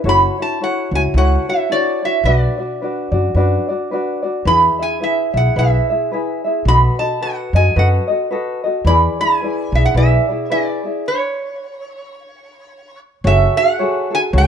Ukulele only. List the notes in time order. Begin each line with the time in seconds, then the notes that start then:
0.04 E4 F#4 A4 C#5
0.38 E4 F#4 C#5
0.60 E4 F#4 A4 C#5
0.93 E4 F#4 C#5
1.16 E4 F#4 A4 C#5
1.48 E4 F#4 C#5
1.69 E4 F#4 A4 C#5
2.02 E4 F#4 C#5
2.25 D4 F#4 B4 D5
2.58 D4 F#4 D5
2.81 D4 F#4 B4 D5
3.12 D4 F#4 D5
3.36 D4 F#4 B4 D5
3.69 D4 F#4 D5
3.91 D4 F#4 B4 D5
4.22 D4 F#4 D5
4.46 E4 G#4 B4 E5
4.79 E4 G#4 E5
5.00 E4 G#4 B4 E5
5.34 E4 G#4 E5
5.56 E4 G#4 B4 E5
5.90 E4 G#4 E5
6.12 E4 G#4 B4 E5
6.44 E4 G#4 E5
6.67 F#4 A4 B4 D#5
6.99 F#4 A4 D#5
7.21 F#4 A4 B4 D#5
7.55 F#4 A4 D#5
7.76 F#4 A4 B4 D#5
8.08 F#4 A4 D#5
8.31 F#4 A4 B4 D#5
8.64 F#4 A4 D#5
8.86 E4 G#4 B4 D5
9.19 E4 G#4 D5
9.42 E4 G#4 B4 D5
9.74 E4 G#4 D5
9.96 E4 G#4 B4 D5
10.28 E4 G#4 D5
10.50 E4 G#4 B4 D5
10.84 E4 G#4 D5
13.24 F#4 G#4 A4 C#5
13.56 F#4 G#4 A4
13.79 F#4 G#4 A4 C#5
14.11 F#4 G#4 A4
14.33 F#4 G#4 A4 C#5